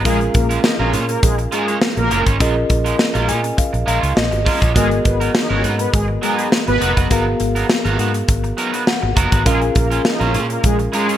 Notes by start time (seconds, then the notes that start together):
0.04 A#1 G#3 C#4 F4 G#4 A#4 F5, kick, closed hi-hat
0.21 muted clean electric guitar stroke, closed hi-hat
0.34 A#1 A#3 A#4, muted clean electric guitar stroke, kick, closed hi-hat
0.49 G#3 C#4 F4 A#4, closed hi-hat
0.64 D#4 D#5, muted clean electric guitar stroke, snare
0.79 A#1 G#3 C#4 F4 A#4 C#5
0.93 A#2 G#3 C#4 F4 C#5, closed hi-hat
1.09 A#3 A#4, muted clean electric guitar stroke, closed hi-hat
1.23 A#1 G#3 G#4, muted clean electric guitar stroke, kick, closed hi-hat
1.38 muted clean electric guitar stroke, closed hi-hat
1.52 G#3 C#4 F4 G#4 A#4, closed hi-hat
1.68 G#3 C#4 F4 C#5, closed hi-hat
1.81 muted clean electric guitar stroke, snare
1.97 A#1 A#3 A#4, muted clean electric guitar stroke, closed hi-hat
2.11 F#1 G#3 C#4 F4 A#4, closed hi-hat
2.26 G#1 G#3 C#4 F4 C#5, kick, closed hi-hat
2.40 A#1 G#3 C#4 F4 G#4 A#4 D#5, kick, closed hi-hat
2.56 muted clean electric guitar stroke
2.69 A#1, muted clean electric guitar stroke, kick, closed hi-hat
2.85 G#3 C#4 F4 A#4, closed hi-hat
2.99 muted clean electric guitar stroke, snare
3.14 A#1 G#3 C#4 F4 A#4, closed hi-hat
3.28 A#2 G#3 C#4 F4 C#5 G#5, closed hi-hat
3.43 muted clean electric guitar stroke, closed hi-hat
3.57 F5, muted clean electric guitar stroke, kick, closed hi-hat
3.73 A#1, muted clean electric guitar stroke, closed hi-hat
3.86 A#1 G#3 C#4 F4 A#4 F5, closed hi-hat
4.01 C#2 G#3 C#4 F4 C#5, closed hi-hat
4.16 A#1 D#5, muted clean electric guitar stroke, snare
4.31 G#1, muted clean electric guitar stroke, closed hi-hat
4.45 G#3 C#4 F4 A#4, kick, open hi-hat
4.61 A#1 G#3 C#4 F4 C#5, kick, closed hi-hat
4.74 G#1 F#3 G#3 B3 D#4 F#4 G#4 A#4 D#5, kick, closed hi-hat
4.90 muted clean electric guitar stroke, closed hi-hat
5.04 G#1 B3 B4, muted clean electric guitar stroke, kick, closed hi-hat
5.20 F#3 B3 D#4 A#4, closed hi-hat
5.34 D#4 D#5, muted clean electric guitar stroke, snare
5.49 G#1 F#3 B3 C#4 D#4 A#4 C#5
5.63 G#2 F#3 B3 D#4 B4, closed hi-hat
5.79 B3 B4, muted clean electric guitar stroke, closed hi-hat
5.93 G#1 G#3 G#4, muted clean electric guitar stroke, kick, closed hi-hat
6.08 muted clean electric guitar stroke
6.22 F#3 G#3 B3 D#4 G#4 A#4, closed hi-hat
6.38 F#3 B3 D#4 B4, closed hi-hat
6.52 muted clean electric guitar stroke, snare
6.67 G#1 B3 B4, muted clean electric guitar stroke, closed hi-hat
6.81 F1 F#3 B3 D#4 A#4, closed hi-hat
6.96 F#1 F#3 B3 D#4 B4, kick, closed hi-hat
7.10 G#1 F#3 B3 D#4 F#4 G#4 A#4 F5, kick, closed hi-hat
7.26 muted clean electric guitar stroke
7.40 G#1, muted clean electric guitar stroke, closed hi-hat
7.55 F#3 B3 D#4 A#4, closed hi-hat
7.69 muted clean electric guitar stroke, snare
7.85 G#1 F#3 B3 D#4 A#4, closed hi-hat
7.99 G#2 F#3 B3 D#4 B4, closed hi-hat
8.14 closed hi-hat
8.28 G#1, muted clean electric guitar stroke, kick, closed hi-hat
8.44 muted clean electric guitar stroke, closed hi-hat
8.57 F#3 B3 D#4 A#4, closed hi-hat
8.73 F#3 B3 D#4 B4, closed hi-hat
8.87 F#5, muted clean electric guitar stroke, snare
9.02 G#1, muted clean electric guitar stroke
9.16 F#1 F#3 B3 D#4 A#4 A#5, kick, closed hi-hat
9.32 G#1 F#3 B3 D#4 B4, kick, closed hi-hat
9.45 A#1 G#3 C#4 F4 G#4 A#4 F5, kick, closed hi-hat
9.62 muted clean electric guitar stroke, closed hi-hat
9.75 A#1 A#3 A#4, muted clean electric guitar stroke, kick, closed hi-hat
9.90 G#3 C#4 F4 A#4, closed hi-hat
10.05 D#4 D#5, snare
10.20 A#1 G#3 C#4 F4 A#4 C#5, closed hi-hat
10.33 A#2 G#3 C#4 F4 C#5, closed hi-hat
10.49 A#3 A#4, muted clean electric guitar stroke, closed hi-hat
10.63 A#1 G#3 G#4, muted clean electric guitar stroke, kick, closed hi-hat
10.79 muted clean electric guitar stroke, closed hi-hat
10.92 G#3 C#4 F4 G#4 A#4, closed hi-hat
11.08 G#3 C#4 F4 C#5, closed hi-hat